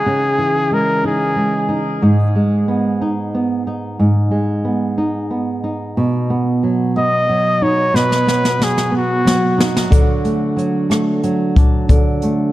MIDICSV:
0, 0, Header, 1, 4, 480
1, 0, Start_track
1, 0, Key_signature, 5, "major"
1, 0, Tempo, 657895
1, 38, Time_signature, 6, 3, 24, 8
1, 9137, End_track
2, 0, Start_track
2, 0, Title_t, "Flugelhorn"
2, 0, Program_c, 0, 56
2, 0, Note_on_c, 0, 68, 81
2, 537, Note_on_c, 0, 70, 76
2, 548, Note_off_c, 0, 68, 0
2, 768, Note_off_c, 0, 70, 0
2, 775, Note_on_c, 0, 68, 76
2, 1278, Note_off_c, 0, 68, 0
2, 5091, Note_on_c, 0, 75, 85
2, 5567, Note_on_c, 0, 73, 76
2, 5578, Note_off_c, 0, 75, 0
2, 5806, Note_on_c, 0, 71, 84
2, 5817, Note_off_c, 0, 73, 0
2, 6301, Note_on_c, 0, 68, 70
2, 6312, Note_off_c, 0, 71, 0
2, 6529, Note_off_c, 0, 68, 0
2, 6545, Note_on_c, 0, 66, 65
2, 7042, Note_off_c, 0, 66, 0
2, 9137, End_track
3, 0, Start_track
3, 0, Title_t, "Nylon-string guitar"
3, 0, Program_c, 1, 24
3, 0, Note_on_c, 1, 52, 42
3, 0, Note_on_c, 1, 56, 40
3, 0, Note_on_c, 1, 63, 51
3, 46, Note_on_c, 1, 49, 60
3, 271, Note_off_c, 1, 52, 0
3, 280, Note_on_c, 1, 52, 44
3, 515, Note_off_c, 1, 56, 0
3, 518, Note_on_c, 1, 56, 45
3, 758, Note_off_c, 1, 63, 0
3, 761, Note_on_c, 1, 63, 53
3, 989, Note_off_c, 1, 56, 0
3, 992, Note_on_c, 1, 56, 45
3, 1227, Note_off_c, 1, 63, 0
3, 1230, Note_on_c, 1, 63, 53
3, 1476, Note_on_c, 1, 44, 64
3, 1482, Note_off_c, 1, 49, 0
3, 1527, Note_off_c, 1, 52, 0
3, 1718, Note_off_c, 1, 56, 0
3, 1718, Note_on_c, 1, 56, 46
3, 1956, Note_on_c, 1, 59, 45
3, 2197, Note_off_c, 1, 63, 0
3, 2200, Note_on_c, 1, 63, 54
3, 2438, Note_off_c, 1, 59, 0
3, 2441, Note_on_c, 1, 59, 43
3, 2675, Note_off_c, 1, 63, 0
3, 2678, Note_on_c, 1, 63, 48
3, 2906, Note_off_c, 1, 44, 0
3, 2914, Note_on_c, 1, 44, 60
3, 3137, Note_off_c, 1, 56, 0
3, 3146, Note_on_c, 1, 56, 44
3, 3387, Note_off_c, 1, 59, 0
3, 3390, Note_on_c, 1, 59, 43
3, 3629, Note_off_c, 1, 63, 0
3, 3632, Note_on_c, 1, 63, 52
3, 3868, Note_off_c, 1, 59, 0
3, 3871, Note_on_c, 1, 59, 39
3, 4110, Note_off_c, 1, 63, 0
3, 4113, Note_on_c, 1, 63, 49
3, 4357, Note_off_c, 1, 44, 0
3, 4357, Note_on_c, 1, 47, 65
3, 4400, Note_off_c, 1, 56, 0
3, 4594, Note_off_c, 1, 59, 0
3, 4597, Note_on_c, 1, 59, 48
3, 4839, Note_on_c, 1, 54, 42
3, 5073, Note_off_c, 1, 59, 0
3, 5082, Note_on_c, 1, 59, 50
3, 5319, Note_off_c, 1, 54, 0
3, 5322, Note_on_c, 1, 54, 45
3, 5554, Note_off_c, 1, 63, 0
3, 5557, Note_on_c, 1, 63, 54
3, 5784, Note_off_c, 1, 47, 0
3, 5793, Note_on_c, 1, 47, 62
3, 6026, Note_off_c, 1, 59, 0
3, 6034, Note_on_c, 1, 59, 48
3, 6265, Note_off_c, 1, 54, 0
3, 6268, Note_on_c, 1, 54, 46
3, 6496, Note_off_c, 1, 59, 0
3, 6505, Note_on_c, 1, 59, 49
3, 6747, Note_off_c, 1, 54, 0
3, 6750, Note_on_c, 1, 54, 46
3, 6980, Note_off_c, 1, 63, 0
3, 6989, Note_on_c, 1, 63, 53
3, 7224, Note_off_c, 1, 47, 0
3, 7227, Note_on_c, 1, 50, 67
3, 7279, Note_off_c, 1, 59, 0
3, 7281, Note_off_c, 1, 63, 0
3, 7472, Note_on_c, 1, 57, 47
3, 7706, Note_off_c, 1, 54, 0
3, 7709, Note_on_c, 1, 54, 49
3, 7943, Note_off_c, 1, 57, 0
3, 7952, Note_on_c, 1, 57, 53
3, 8196, Note_off_c, 1, 54, 0
3, 8199, Note_on_c, 1, 54, 49
3, 8441, Note_on_c, 1, 62, 59
3, 8672, Note_off_c, 1, 50, 0
3, 8680, Note_on_c, 1, 50, 71
3, 8914, Note_off_c, 1, 57, 0
3, 8924, Note_on_c, 1, 57, 49
3, 9137, Note_off_c, 1, 50, 0
3, 9137, Note_off_c, 1, 54, 0
3, 9137, Note_off_c, 1, 57, 0
3, 9137, Note_off_c, 1, 62, 0
3, 9137, End_track
4, 0, Start_track
4, 0, Title_t, "Drums"
4, 5806, Note_on_c, 9, 38, 41
4, 5879, Note_off_c, 9, 38, 0
4, 5925, Note_on_c, 9, 38, 40
4, 5998, Note_off_c, 9, 38, 0
4, 6043, Note_on_c, 9, 38, 54
4, 6116, Note_off_c, 9, 38, 0
4, 6164, Note_on_c, 9, 38, 45
4, 6237, Note_off_c, 9, 38, 0
4, 6285, Note_on_c, 9, 38, 57
4, 6358, Note_off_c, 9, 38, 0
4, 6403, Note_on_c, 9, 38, 55
4, 6476, Note_off_c, 9, 38, 0
4, 6766, Note_on_c, 9, 38, 74
4, 6839, Note_off_c, 9, 38, 0
4, 7007, Note_on_c, 9, 38, 86
4, 7080, Note_off_c, 9, 38, 0
4, 7125, Note_on_c, 9, 38, 80
4, 7198, Note_off_c, 9, 38, 0
4, 7238, Note_on_c, 9, 36, 83
4, 7239, Note_on_c, 9, 42, 75
4, 7311, Note_off_c, 9, 36, 0
4, 7312, Note_off_c, 9, 42, 0
4, 7477, Note_on_c, 9, 42, 48
4, 7550, Note_off_c, 9, 42, 0
4, 7722, Note_on_c, 9, 42, 50
4, 7795, Note_off_c, 9, 42, 0
4, 7959, Note_on_c, 9, 42, 67
4, 7965, Note_on_c, 9, 37, 85
4, 8032, Note_off_c, 9, 42, 0
4, 8038, Note_off_c, 9, 37, 0
4, 8196, Note_on_c, 9, 42, 46
4, 8269, Note_off_c, 9, 42, 0
4, 8437, Note_on_c, 9, 36, 79
4, 8441, Note_on_c, 9, 42, 44
4, 8510, Note_off_c, 9, 36, 0
4, 8514, Note_off_c, 9, 42, 0
4, 8677, Note_on_c, 9, 36, 78
4, 8679, Note_on_c, 9, 42, 76
4, 8750, Note_off_c, 9, 36, 0
4, 8752, Note_off_c, 9, 42, 0
4, 8915, Note_on_c, 9, 42, 48
4, 8988, Note_off_c, 9, 42, 0
4, 9137, End_track
0, 0, End_of_file